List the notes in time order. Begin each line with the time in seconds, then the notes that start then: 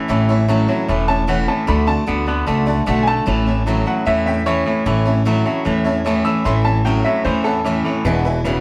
Already playing: E5
0.08 A1 A2 E3 A3 C#4 E4 C#5 E5 A5
0.29 A3 C#4 E4 C#5 E5 A5
0.48 A2 E3 F#3 A3 C#4 E4 C#5 E5 A5
0.68 A2 F#3 A3 C#4 E4 C#5 E5 A5
0.88 E1 A2 E3 A3 C#4 E4 C#5 E5 A5
1.08 A3 C#4 E4 C#5 E5 A5
1.27 A2 E3 A3 C#4 E4 C#5 E5 F#5 A5
1.47 A2 E3 A3 C#4 E4 C#5 E5 A5
1.67 D2 D3 A3 D4 F#4 D5 F#5 A5 B5
1.87 A3 D4 F#4 D5 F#5 A5
2.07 D2 D3 A3 B3 D4 F#4 D5 F#5 A5
2.26 D3 A3 B3 D4 F#4 D5 F#5 A5
2.46 C#2 D3 A3 D4 F#4 D5 F#5 A5
2.66 A3 D4 F#4 D5 F#5 A5
2.86 B1 D3 A3 D4 F#4 D5 F#5 A5
3.03 D3 F#4 D5 G#5
3.07 A3 D4 F#5 A5
3.26 A1 A2 E3 A3 C#4 E4 C#5 E5 A5
3.47 A3 C#4 E4 C#5 E5 A5
3.66 A2 E3 F#3 A3 C#4 E4 C#5 E5 A5
3.86 A2 F#3 A3 C#4 E4 C#5 E5 F#5 A5
4.06 E2 A2 E3 A3 C#4 E4 C#5 E5 A5
4.26 A3 C#4 E4 C#5 E5 G5
4.46 A2 E3 A3 C#4 E4 C#5 E5 A5
4.66 A2 E3 A3 C#4 E4 C#5 E5 A5
4.86 A1 A2 E3 A3 C#4 E4 C#5 E5 A5
5.05 A3 C#4 E4 C#5 E5 A5
5.25 A2 E3 F#3 A3 C#4 E4 C#5 E5 A5
5.45 A2 F#3 A3 C#4 E4 C#5 E5 A5
5.65 E2 A2 E3 A3 C#4 E4 C#5 E5 A5
5.84 A3 C#4 E4 C#5 E5 A5
6.05 A2 E3 A3 C#4 E4 C#5 E5 A5
6.25 A2 E3 A3 C#4 E4 C#5 E5 A5 E6
6.44 A1 A2 E3 A3 C#4 E4 C#5 E5 A5 C6
6.64 A3 C#4 E4 C#5 E5 A5
6.84 A2 E3 F#3 A3 C#4 E4 C#5 E5 G5 A5
7.04 A2 F#3 A3 C#4 E4 C#5 E5 A5
7.24 E2 A2 E3 A3 C#4 E4 C5 C#5 E5 A5
7.44 A3 C#4 E4 A4 C#5 E5 F#5
7.64 A2 E3 A3 C#4 E4 C#5 E5 B5
7.85 A2 E3 A3 C#4 E4 C#5 E5 A5
8.05 E1 E2 B2 E3 G#3 D4 E4 B4 E5 G#5
8.25 E3 G#3 D4 E4 B4 E5 G#5
8.45 E2 B2 C#3 E3 G#3 D4 E4 B4 E5 G#5